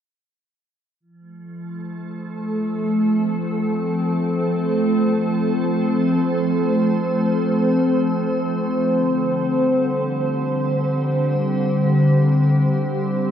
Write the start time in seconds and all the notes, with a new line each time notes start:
1.00 F3
1.19 A3
1.49 A4
2.70 C4
3.56 C5
8.86 D3
9.14 G3
10.45 G4